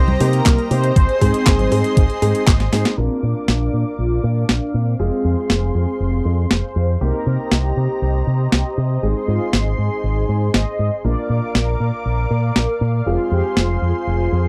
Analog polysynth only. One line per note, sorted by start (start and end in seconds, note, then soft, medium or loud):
0.00 0.30 C4 medium
0.00 0.29 C5 loud
0.33 0.69 A#3 medium
0.33 0.68 A#4 loud
0.71 2.44 C4 medium
0.71 2.43 C5 loud
2.98 3.24 C4 medium
3.23 3.95 D4 medium
3.99 4.25 F4 medium
4.24 4.76 D4 medium
4.74 6.56 C4 loud
6.50 7.03 C5 loud
7.01 7.53 A#4 loud
7.51 8.00 G4 medium
8.02 9.06 G4 loud
9.02 9.26 D#4 loud
9.28 9.54 F4 medium
9.53 10.57 D#4 loud
10.54 11.01 D#5 loud
11.04 11.56 D5 loud
11.55 12.04 A#4 loud
12.05 13.09 A#4 loud
13.06 13.32 F4 loud
13.31 13.57 G4 medium
13.56 14.48 F4 loud